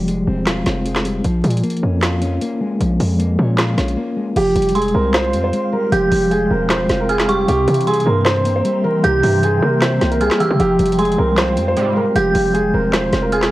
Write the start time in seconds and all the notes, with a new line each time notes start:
Already playing: F1 F3 G3
0.08 G#3, closed hi-hat
0.27 E1 C4
0.46 F4, snare, clap, closed hi-hat
0.66 F1 C4, snare, closed hi-hat
0.86 G#3, closed hi-hat
0.95 snare, clap
1.05 G3, closed hi-hat
1.25 A#1 F3, closed hi-hat
1.44 A#2 G#3, closed hi-hat
1.51 closed hi-hat
1.57 closed hi-hat
1.63 A#3, closed hi-hat
1.70 closed hi-hat
1.77 closed hi-hat
1.82 F2 C#4
2.02 F4, snare, clap, closed hi-hat
2.22 C#4, closed hi-hat
2.41 A#3, closed hi-hat
2.61 G#3
2.80 A#1 F3, closed hi-hat
3.00 F2 G#3, open hi-hat
3.19 A#3, closed hi-hat
3.39 A#2 C#4
3.58 F4, snare, clap, closed hi-hat
3.77 A#1 C#4, snare, closed hi-hat
3.88 closed hi-hat
3.97 A#3
4.17 G#3
4.36 F1 F3 G4 F5 G5 C6, closed hi-hat, crash
4.56 F1 G3, closed hi-hat
4.62 closed hi-hat
4.69 closed hi-hat
4.75 G#3 G#4 C6, closed hi-hat
4.82 closed hi-hat
4.88 closed hi-hat
4.94 C2 C4 A#4
5.14 F4 C5, snare, clap, closed hi-hat
5.33 F2 C4, closed hi-hat
5.44 C5
5.53 G#3, closed hi-hat
5.73 G3 A#4
5.92 F1 F3 G4 G6, closed hi-hat
6.12 F1 G3, open hi-hat
6.31 G#3 G#4, closed hi-hat
6.50 E1 C4 A#4
6.69 F4 C5, snare, clap, closed hi-hat
6.89 F1 C4, snare, closed hi-hat
7.00 A#4
7.09 G#3 G#4 F6, closed hi-hat
7.19 snare, clap
7.28 G3 G4 C#6, closed hi-hat
7.48 C2 C3 G4 E5 A#5, closed hi-hat
7.68 C3 E3, closed hi-hat
7.74 closed hi-hat
7.81 closed hi-hat
7.86 G3 G#4 C6, closed hi-hat
7.93 closed hi-hat
8.00 closed hi-hat
8.06 G2 A#3 A#4
8.25 C4 C5, snare, clap, closed hi-hat
8.45 A#3, closed hi-hat
8.56 C5
8.65 G3, closed hi-hat
8.84 E3 A#4
9.04 C2 C3 G4 G6, closed hi-hat
9.23 G2 E3, open hi-hat
9.43 G3 G#4, closed hi-hat
9.62 C3 A#3 A#4
9.81 C4 C5, snare, clap, closed hi-hat
10.01 C2 A#3, snare, closed hi-hat
10.11 A#4, closed hi-hat
10.21 G3 G#4 F6, closed hi-hat
10.31 snare, clap
10.40 E3 G4 E6, closed hi-hat
10.51 C3
10.59 F1 F3 G4 F5, closed hi-hat
10.79 F1 G3, closed hi-hat
10.86 closed hi-hat
10.92 closed hi-hat
10.98 G#3 G#4 C6, closed hi-hat
11.05 closed hi-hat
11.12 closed hi-hat
11.18 C2 C4 A#4
11.37 F4 C5, snare, clap, closed hi-hat
11.57 F2 C4, closed hi-hat
11.68 C5
11.77 G#2 C3 G3 G#3, closed hi-hat
11.96 G3 A#4
12.15 F1 F3 G4 G6, closed hi-hat
12.34 F1 G3, open hi-hat
12.54 G#3 G#4, closed hi-hat
12.74 E1 C4 A#4
12.93 F4 C5, snare, clap, closed hi-hat
13.13 F1 C4, snare, closed hi-hat
13.22 A#4
13.32 G#3 G#4 F6, closed hi-hat
13.42 snare, clap